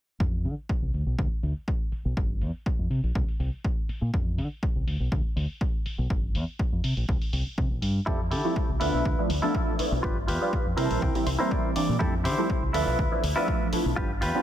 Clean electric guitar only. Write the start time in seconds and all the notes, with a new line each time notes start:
8.06 E4 G4 A4
8.31 E4 G4 A4
8.80 E4 F4 B4
9.29 muted clean electric guitar stroke
9.42 E4 F4 A4
10.03 F4 G4 B4
10.27 F4 G4 B4
10.77 E4 A#4 C5 A#5
10.86 A5
11.02 G5
11.26 C5, muted clean electric guitar stroke
11.39 E4 A#4 C5
11.51 D5
11.76 D5
11.99 E4 G4 A4
12.24 E4 G4 C5
12.73 E4 F4 B4
13.23 muted clean electric guitar stroke
13.36 E4 F4 B4
13.96 F4 G4 B4
14.21 F4 G4 B4